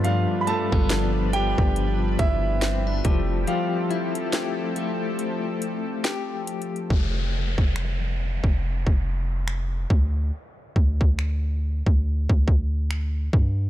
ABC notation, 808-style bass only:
X:1
M:4/4
L:1/16
Q:"Swing 16ths" 1/4=70
K:F
V:1 name="808-style bass" clef=bass
G,, z2 G,,,4 G,,,3 G,,,4 F,,,2 | z16 | F,,,3 F,,,4 F,,,2 F,,,4- F,,, D,,2 | z2 D,,4- D,, D,,2 D,,4- D,, G,,2 |]